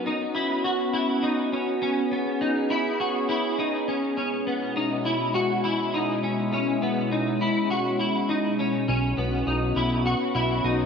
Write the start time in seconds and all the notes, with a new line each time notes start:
Already playing: B3 C#4 F#4
0.06 D#4
0.35 E4
0.64 F#4
0.93 E4
1.23 D#4
1.52 C#4
1.82 C#4 G#4
2.11 B3
2.41 D#4
2.70 E4
3.00 F#4
3.29 E4
3.59 D#4
3.88 C#4
4.17 B2 G#3 C#4 E4
4.47 B3
4.76 D#4
5.05 E4
5.34 F#4
5.64 E4
5.94 D#4
6.23 C#4
6.53 C#4
6.82 B3
7.11 D#4
7.41 E4
7.70 F#4
8.00 E4
8.29 D#4
8.59 C#4
8.88 B1 B3 C#4 F#4
9.17 B1 B3
9.47 B1 D#4
9.76 B1 E4
10.06 F#4
10.35 B1 E4
10.64 B1 D#4